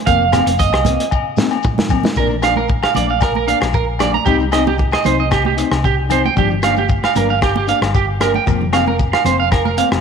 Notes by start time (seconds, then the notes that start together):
0.06 F1 A#3 C4 F5, muted steel-string acoustic guitar stroke, kick, closed hi-hat, shekere
0.32 A#3 C4, cross-stick, closed hi-hat, high conga, low agogo, shekere
0.46 F1, closed hi-hat, shekere
0.58 D#5, kick, closed hi-hat, shekere
0.73 C2, cross-stick, low agogo
0.85 A#3 C4, closed hi-hat, high conga, low conga, shekere
1.00 closed hi-hat
1.11 kick, low agogo, shekere
1.37 C4, snare, high conga, shekere
1.41 A#3
1.51 low agogo, shekere
1.63 kick, mid tom, shekere
1.78 snare, high conga, low conga
1.89 C4, kick, low conga, low agogo, shekere
1.93 A#3
2.03 snare, high conga, shekere
2.16 A#1 F3 A#3 D4 A#4, kick, shekere
2.30 shekere
2.42 A#3 D4 F5, cross-stick, closed hi-hat, low agogo, shekere
2.56 A#4, high conga, shekere
2.68 kick, shekere
2.83 F5, cross-stick, low agogo, shekere
2.95 A#1 A#3 D4 D5, closed hi-hat, high conga, low conga, shekere
3.08 F5, shekere
3.21 A#4, kick, cross-stick, low agogo, shekere
3.35 A#4, high conga
3.47 A#3 D4 F5, closed hi-hat, shekere
3.61 A#1, cross-stick, low agogo, shekere
3.73 A#4, kick, shekere
3.99 A#3 D4 D5, cross-stick, closed hi-hat, low conga, low agogo, shekere
4.14 A#5, high conga, shekere
4.25 C2 G3 C4 D#4 G4, kick, shekere
4.40 shekere
4.52 C4 D#4 D#5, cross-stick, closed hi-hat, low agogo, shekere
4.66 G4, high conga, shekere
4.78 kick, shekere
4.92 D#5, cross-stick, low agogo, shekere
5.04 C2 C4 D#4 C5, closed hi-hat, high conga, low conga, shekere
5.19 D#5, shekere
5.31 G4, kick, cross-stick, low agogo, shekere
5.45 G4, high conga
5.57 C4 D#4, muted clean electric guitar stroke, closed hi-hat, shekere
5.71 C2, cross-stick, low agogo, shekere
5.84 G4, kick, shekere
6.09 C4 D#4 C5, closed hi-hat, low conga, low agogo, shekere
6.25 G5, high conga, shekere
6.36 G1 F3 D4 G4, muted steel-string acoustic guitar stroke, kick, shekere
6.50 shekere
6.62 A#3 D4 F5, cross-stick, closed hi-hat, low agogo, shekere
6.76 G4, high conga, shekere
6.89 kick, shekere
7.03 F5, cross-stick, low agogo, shekere
7.15 G1 A#3 D4 A#4, closed hi-hat, high conga, low conga, shekere
7.29 F5, shekere
7.41 G4, kick, cross-stick, low agogo, shekere
7.56 G4, high conga
7.67 A#3 D4 F5, closed hi-hat, shekere
7.81 G1, cross-stick, low agogo, shekere
7.95 G4, kick, shekere
8.20 A#3 D4 A#4, cross-stick, closed hi-hat, low conga, low agogo, shekere
8.34 G5, high conga, shekere
8.46 F1 F3 A#3 C4, muted clean electric guitar stroke, kick, shekere
8.61 low conga
8.73 A#3 C4 F5, cross-stick, closed hi-hat, low agogo, shekere
8.87 A#4, high conga
8.99 kick, shekere
9.13 F5, cross-stick, low agogo, shekere
9.24 F1 A#3 C4 C5, closed hi-hat, high conga, low conga, shekere
9.40 F5
9.52 A#4, kick, cross-stick, low agogo, shekere
9.65 A#4, high conga, shekere
9.77 A#3 C4 F5, closed hi-hat, shekere
9.92 F1, cross-stick, low agogo, shekere